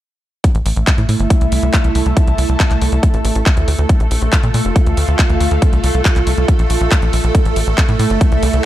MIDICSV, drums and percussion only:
0, 0, Header, 1, 2, 480
1, 0, Start_track
1, 0, Tempo, 431655
1, 490, Time_signature, 4, 2, 24, 8
1, 9621, End_track
2, 0, Start_track
2, 0, Title_t, "Drums"
2, 490, Note_on_c, 9, 36, 117
2, 490, Note_on_c, 9, 42, 95
2, 601, Note_off_c, 9, 36, 0
2, 601, Note_off_c, 9, 42, 0
2, 610, Note_on_c, 9, 42, 40
2, 721, Note_off_c, 9, 42, 0
2, 730, Note_on_c, 9, 46, 99
2, 841, Note_off_c, 9, 46, 0
2, 850, Note_on_c, 9, 42, 38
2, 961, Note_off_c, 9, 42, 0
2, 970, Note_on_c, 9, 36, 111
2, 970, Note_on_c, 9, 39, 125
2, 970, Note_on_c, 9, 42, 99
2, 1081, Note_off_c, 9, 36, 0
2, 1081, Note_off_c, 9, 39, 0
2, 1081, Note_off_c, 9, 42, 0
2, 1090, Note_on_c, 9, 42, 41
2, 1201, Note_off_c, 9, 42, 0
2, 1210, Note_on_c, 9, 46, 86
2, 1321, Note_off_c, 9, 46, 0
2, 1330, Note_on_c, 9, 42, 37
2, 1441, Note_off_c, 9, 42, 0
2, 1450, Note_on_c, 9, 36, 119
2, 1450, Note_on_c, 9, 42, 100
2, 1561, Note_off_c, 9, 36, 0
2, 1561, Note_off_c, 9, 42, 0
2, 1570, Note_on_c, 9, 42, 42
2, 1681, Note_off_c, 9, 42, 0
2, 1690, Note_on_c, 9, 46, 105
2, 1801, Note_off_c, 9, 46, 0
2, 1810, Note_on_c, 9, 42, 41
2, 1921, Note_off_c, 9, 42, 0
2, 1930, Note_on_c, 9, 36, 113
2, 1930, Note_on_c, 9, 39, 127
2, 1930, Note_on_c, 9, 42, 107
2, 2041, Note_off_c, 9, 36, 0
2, 2041, Note_off_c, 9, 39, 0
2, 2041, Note_off_c, 9, 42, 0
2, 2050, Note_on_c, 9, 42, 41
2, 2161, Note_off_c, 9, 42, 0
2, 2170, Note_on_c, 9, 46, 96
2, 2281, Note_off_c, 9, 46, 0
2, 2290, Note_on_c, 9, 42, 41
2, 2401, Note_off_c, 9, 42, 0
2, 2410, Note_on_c, 9, 36, 121
2, 2410, Note_on_c, 9, 42, 92
2, 2521, Note_off_c, 9, 36, 0
2, 2521, Note_off_c, 9, 42, 0
2, 2530, Note_on_c, 9, 42, 39
2, 2641, Note_off_c, 9, 42, 0
2, 2650, Note_on_c, 9, 46, 101
2, 2761, Note_off_c, 9, 46, 0
2, 2770, Note_on_c, 9, 42, 36
2, 2881, Note_off_c, 9, 42, 0
2, 2890, Note_on_c, 9, 36, 115
2, 2890, Note_on_c, 9, 39, 127
2, 2890, Note_on_c, 9, 42, 95
2, 3001, Note_off_c, 9, 36, 0
2, 3001, Note_off_c, 9, 39, 0
2, 3001, Note_off_c, 9, 42, 0
2, 3010, Note_on_c, 9, 39, 38
2, 3010, Note_on_c, 9, 42, 40
2, 3121, Note_off_c, 9, 39, 0
2, 3121, Note_off_c, 9, 42, 0
2, 3130, Note_on_c, 9, 46, 90
2, 3241, Note_off_c, 9, 46, 0
2, 3250, Note_on_c, 9, 42, 38
2, 3361, Note_off_c, 9, 42, 0
2, 3370, Note_on_c, 9, 36, 117
2, 3370, Note_on_c, 9, 42, 93
2, 3481, Note_off_c, 9, 36, 0
2, 3481, Note_off_c, 9, 42, 0
2, 3490, Note_on_c, 9, 42, 41
2, 3601, Note_off_c, 9, 42, 0
2, 3610, Note_on_c, 9, 46, 108
2, 3721, Note_off_c, 9, 46, 0
2, 3730, Note_on_c, 9, 42, 43
2, 3841, Note_off_c, 9, 42, 0
2, 3850, Note_on_c, 9, 36, 127
2, 3850, Note_on_c, 9, 39, 127
2, 3850, Note_on_c, 9, 42, 94
2, 3961, Note_off_c, 9, 36, 0
2, 3961, Note_off_c, 9, 39, 0
2, 3961, Note_off_c, 9, 42, 0
2, 3970, Note_on_c, 9, 42, 40
2, 4081, Note_off_c, 9, 42, 0
2, 4090, Note_on_c, 9, 46, 96
2, 4201, Note_off_c, 9, 46, 0
2, 4210, Note_on_c, 9, 42, 39
2, 4321, Note_off_c, 9, 42, 0
2, 4330, Note_on_c, 9, 36, 126
2, 4330, Note_on_c, 9, 42, 89
2, 4441, Note_off_c, 9, 36, 0
2, 4441, Note_off_c, 9, 42, 0
2, 4450, Note_on_c, 9, 42, 37
2, 4561, Note_off_c, 9, 42, 0
2, 4570, Note_on_c, 9, 46, 103
2, 4681, Note_off_c, 9, 46, 0
2, 4810, Note_on_c, 9, 36, 116
2, 4810, Note_on_c, 9, 39, 127
2, 4810, Note_on_c, 9, 42, 91
2, 4921, Note_off_c, 9, 36, 0
2, 4921, Note_off_c, 9, 39, 0
2, 4921, Note_off_c, 9, 42, 0
2, 4930, Note_on_c, 9, 42, 38
2, 5041, Note_off_c, 9, 42, 0
2, 5050, Note_on_c, 9, 46, 95
2, 5161, Note_off_c, 9, 46, 0
2, 5170, Note_on_c, 9, 42, 37
2, 5281, Note_off_c, 9, 42, 0
2, 5290, Note_on_c, 9, 36, 127
2, 5290, Note_on_c, 9, 42, 89
2, 5401, Note_off_c, 9, 36, 0
2, 5401, Note_off_c, 9, 42, 0
2, 5410, Note_on_c, 9, 42, 39
2, 5521, Note_off_c, 9, 42, 0
2, 5530, Note_on_c, 9, 46, 112
2, 5641, Note_off_c, 9, 46, 0
2, 5650, Note_on_c, 9, 42, 38
2, 5761, Note_off_c, 9, 42, 0
2, 5770, Note_on_c, 9, 36, 119
2, 5770, Note_on_c, 9, 39, 127
2, 5770, Note_on_c, 9, 42, 95
2, 5881, Note_off_c, 9, 36, 0
2, 5881, Note_off_c, 9, 39, 0
2, 5881, Note_off_c, 9, 42, 0
2, 5890, Note_on_c, 9, 42, 38
2, 6001, Note_off_c, 9, 42, 0
2, 6010, Note_on_c, 9, 46, 93
2, 6121, Note_off_c, 9, 46, 0
2, 6130, Note_on_c, 9, 42, 36
2, 6241, Note_off_c, 9, 42, 0
2, 6250, Note_on_c, 9, 36, 118
2, 6250, Note_on_c, 9, 42, 90
2, 6361, Note_off_c, 9, 36, 0
2, 6361, Note_off_c, 9, 42, 0
2, 6370, Note_on_c, 9, 42, 38
2, 6481, Note_off_c, 9, 42, 0
2, 6490, Note_on_c, 9, 46, 104
2, 6601, Note_off_c, 9, 46, 0
2, 6610, Note_on_c, 9, 42, 34
2, 6721, Note_off_c, 9, 42, 0
2, 6730, Note_on_c, 9, 36, 121
2, 6730, Note_on_c, 9, 39, 119
2, 6730, Note_on_c, 9, 42, 86
2, 6841, Note_off_c, 9, 36, 0
2, 6841, Note_off_c, 9, 39, 0
2, 6841, Note_off_c, 9, 42, 0
2, 6850, Note_on_c, 9, 39, 36
2, 6850, Note_on_c, 9, 42, 39
2, 6961, Note_off_c, 9, 39, 0
2, 6961, Note_off_c, 9, 42, 0
2, 6970, Note_on_c, 9, 46, 97
2, 7081, Note_off_c, 9, 46, 0
2, 7090, Note_on_c, 9, 42, 35
2, 7201, Note_off_c, 9, 42, 0
2, 7210, Note_on_c, 9, 36, 122
2, 7210, Note_on_c, 9, 42, 87
2, 7321, Note_off_c, 9, 36, 0
2, 7321, Note_off_c, 9, 42, 0
2, 7330, Note_on_c, 9, 42, 39
2, 7441, Note_off_c, 9, 42, 0
2, 7450, Note_on_c, 9, 46, 107
2, 7561, Note_off_c, 9, 46, 0
2, 7570, Note_on_c, 9, 42, 36
2, 7681, Note_off_c, 9, 42, 0
2, 7690, Note_on_c, 9, 36, 116
2, 7690, Note_on_c, 9, 39, 127
2, 7690, Note_on_c, 9, 42, 96
2, 7801, Note_off_c, 9, 36, 0
2, 7801, Note_off_c, 9, 39, 0
2, 7801, Note_off_c, 9, 42, 0
2, 7810, Note_on_c, 9, 42, 37
2, 7921, Note_off_c, 9, 42, 0
2, 7930, Note_on_c, 9, 46, 95
2, 8041, Note_off_c, 9, 46, 0
2, 8050, Note_on_c, 9, 42, 36
2, 8161, Note_off_c, 9, 42, 0
2, 8170, Note_on_c, 9, 36, 120
2, 8170, Note_on_c, 9, 42, 88
2, 8281, Note_off_c, 9, 36, 0
2, 8281, Note_off_c, 9, 42, 0
2, 8290, Note_on_c, 9, 42, 36
2, 8401, Note_off_c, 9, 42, 0
2, 8410, Note_on_c, 9, 46, 104
2, 8521, Note_off_c, 9, 46, 0
2, 8530, Note_on_c, 9, 42, 35
2, 8641, Note_off_c, 9, 42, 0
2, 8650, Note_on_c, 9, 36, 113
2, 8650, Note_on_c, 9, 39, 120
2, 8650, Note_on_c, 9, 42, 95
2, 8761, Note_off_c, 9, 36, 0
2, 8761, Note_off_c, 9, 39, 0
2, 8761, Note_off_c, 9, 42, 0
2, 8770, Note_on_c, 9, 42, 35
2, 8881, Note_off_c, 9, 42, 0
2, 8890, Note_on_c, 9, 46, 92
2, 9001, Note_off_c, 9, 46, 0
2, 9010, Note_on_c, 9, 42, 36
2, 9121, Note_off_c, 9, 42, 0
2, 9130, Note_on_c, 9, 36, 120
2, 9130, Note_on_c, 9, 42, 89
2, 9241, Note_off_c, 9, 36, 0
2, 9241, Note_off_c, 9, 42, 0
2, 9250, Note_on_c, 9, 42, 38
2, 9361, Note_off_c, 9, 42, 0
2, 9370, Note_on_c, 9, 46, 109
2, 9481, Note_off_c, 9, 46, 0
2, 9490, Note_on_c, 9, 42, 38
2, 9601, Note_off_c, 9, 42, 0
2, 9621, End_track
0, 0, End_of_file